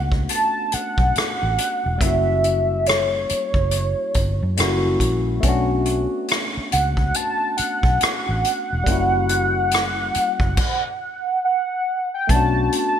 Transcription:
0.00 0.25 C#2 medium
0.00 1.95 A3 medium
0.00 1.96 B3 medium
0.00 1.97 C#4 medium
0.00 1.98 D4 medium
0.00 2.03 F#4 medium
0.12 kick medium
0.29 0.75 A5 loud
0.29 closed hi-hat medium
0.72 2.03 F#5 loud
0.72 muted fingered electric bass stroke soft
0.72 closed hi-hat medium
0.98 1.13 B1 medium
0.98 kick medium
1.16 muted fingered electric bass stroke soft
1.16 cross-stick medium
1.16 closed hi-hat medium
1.43 1.56 A1 medium
1.58 closed hi-hat medium
1.86 1.99 E1 medium
1.98 4.52 G3 medium
1.98 4.53 A#3 soft
1.98 2.89 E5 medium
1.98 kick medium
1.98 closed hi-hat medium
2.02 3.26 F#1 medium
2.02 4.54 C#4 medium
2.02 4.55 E4 soft
2.06 4.56 F#4 medium
2.44 closed hi-hat medium
2.86 5.01 C#5 medium
2.86 cross-stick medium
2.86 closed hi-hat medium
3.29 muted fingered electric bass stroke soft
3.29 closed hi-hat medium
3.54 3.93 F#1 medium
3.54 kick medium
3.71 closed hi-hat medium
4.14 4.40 G1 medium
4.14 kick medium
4.14 closed hi-hat medium
4.43 4.60 F#2 medium
4.57 4.96 F#1 medium
4.57 5.43 G3 medium
4.57 5.43 A#3 medium
4.57 5.43 C#4 medium
4.57 5.45 E4 medium
4.57 cross-stick medium
4.57 closed hi-hat medium
4.61 5.45 F#4 medium
5.00 5.39 A#1 medium
5.00 kick medium
5.00 closed hi-hat medium
5.40 6.05 B1 medium
5.40 8.81 A3 medium
5.40 8.82 B3 medium
5.40 kick medium
5.40 closed hi-hat medium
5.44 8.83 C#4 medium
5.44 8.84 D4 medium
5.49 8.85 F#4 medium
5.86 closed hi-hat medium
6.28 cross-stick loud
6.28 closed hi-hat medium
6.57 muted fingered electric bass stroke soft
6.72 7.11 C#2 medium
6.72 7.17 F#5 medium
6.72 closed hi-hat medium
6.97 kick medium
7.14 7.57 A5 loud
7.14 closed hi-hat medium
7.57 11.39 F#5 loud
7.57 muted fingered electric bass stroke soft
7.57 closed hi-hat medium
7.83 7.98 B1 medium
7.83 kick medium
8.01 muted fingered electric bass stroke soft
8.01 cross-stick medium
8.01 closed hi-hat medium
8.29 8.42 A1 medium
8.44 closed hi-hat medium
8.73 8.86 E1 medium
8.84 10.11 F#1 medium
8.84 10.53 G3 medium
8.84 10.54 A#3 medium
8.84 kick medium
8.84 closed hi-hat medium
8.88 10.55 C#4 medium
8.88 10.56 E4 medium
8.92 10.57 F#4 medium
9.29 closed hi-hat medium
9.71 cross-stick medium
9.71 closed hi-hat medium
10.14 muted fingered electric bass stroke soft
10.14 closed hi-hat medium
10.40 10.55 F#1 medium
10.40 kick medium
10.57 kick loud
10.57 crash medium
11.45 12.10 F#5 loud
12.14 12.32 G5 medium
12.27 12.67 B1 loud
12.27 13.00 A3 medium
12.27 13.00 B3 medium
12.27 12.87 A5 loud
12.27 kick medium
12.27 closed hi-hat medium
12.31 13.00 C#4 medium
12.31 13.00 D4 medium
12.36 13.00 F#4 medium
12.72 closed hi-hat medium
12.88 13.00 A5 loud

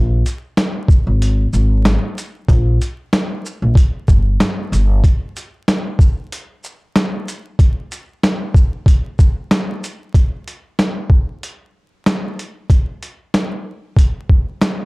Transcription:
0.00 0.21 A#1 loud
0.26 closed hi-hat medium
0.26 shaker medium
0.57 snare loud
0.57 snare medium
0.57 closed hi-hat medium
0.88 kick loud
0.88 shaker medium
1.07 1.46 G#1 medium
1.22 closed hi-hat loud
1.53 1.95 G#1 medium
1.53 shaker medium
1.85 snare loud
1.85 snare medium
1.85 closed hi-hat medium
2.18 closed hi-hat medium
2.18 shaker medium
2.49 2.76 A#1 loud
2.49 kick loud
2.49 closed hi-hat medium
2.82 closed hi-hat medium
2.82 shaker medium
3.13 snare loud
3.13 snare medium
3.13 closed hi-hat medium
3.46 shaker medium
3.62 3.74 A#1 medium
3.75 kick loud
3.75 closed hi-hat loud
4.08 4.36 G1 medium
4.08 kick medium
4.08 shaker medium
4.40 snare loud
4.40 closed hi-hat medium
4.72 4.99 G1 medium
4.72 closed hi-hat medium
4.72 shaker medium
5.04 kick loud
5.04 closed hi-hat medium
5.37 closed hi-hat medium
5.37 shaker medium
5.68 snare loud
5.68 snare medium
5.68 closed hi-hat medium
5.99 kick loud
5.99 shaker medium
6.32 closed hi-hat loud
6.64 shaker medium
6.96 snare loud
6.96 closed hi-hat medium
7.28 closed hi-hat medium
7.28 shaker medium
7.59 kick loud
7.59 closed hi-hat medium
7.92 closed hi-hat medium
7.92 shaker medium
8.23 snare loud
8.23 snare medium
8.23 closed hi-hat medium
8.54 kick loud
8.54 shaker medium
8.86 kick loud
8.86 closed hi-hat loud
9.19 kick medium
9.19 shaker medium
9.51 snare loud
9.51 closed hi-hat medium
9.84 closed hi-hat medium
9.84 shaker medium
10.14 kick loud
10.14 closed hi-hat medium
10.48 closed hi-hat medium
10.79 snare loud
10.79 snare medium
10.79 closed hi-hat medium
11.10 kick loud
11.43 closed hi-hat medium
12.06 snare loud
12.06 snare medium
12.06 closed hi-hat medium
12.39 closed hi-hat medium
12.70 kick loud
12.70 closed hi-hat medium
13.03 closed hi-hat medium
13.34 snare loud
13.34 snare medium
13.34 closed hi-hat medium
13.96 kick medium
13.96 closed hi-hat medium
14.29 kick medium
14.61 snare loud
14.61 snare medium
14.61 closed hi-hat medium

